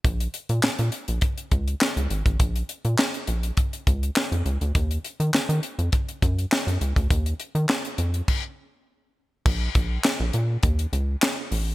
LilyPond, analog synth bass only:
\new Staff \with { instrumentName = "Analog synth bass" } { \clef bass \time 4/4 \key bes \minor \tempo 4 = 102 bes,,8 r16 bes,16 bes,16 bes,16 r16 bes,,16 r8 des,8 r16 des,16 aes,,16 a,,16 | bes,,8 r16 bes,16 r8 bes,,8 r8 des,8 r16 f,16 des,16 d,16 | ees,8 r16 ees16 ees16 ees16 r16 f,16 r8 ges,8 r16 ges,16 des,16 d,16 | ees,8 r16 ees16 r8 f,8 r2 |
bes,,8 bes,,8 r16 bes,,16 bes,8 ees,8 des,8 r8 a,,8 | }